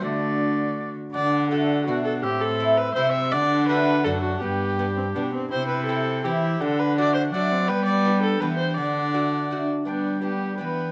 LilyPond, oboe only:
\new Staff \with { instrumentName = "Oboe" } { \time 3/4 \key d \mixolydian \tempo 4 = 165 d''2~ d''8 r8 | fis''4 fis''4 fis''4 | e''2 e''4 | fis''2 fis''4 |
g''2~ g''8 r8 | g''2 g''4 | fis''2 fis''4 | g''2 g''4 |
fis''2~ fis''8 r8 | g''4 g''4 g''4 | }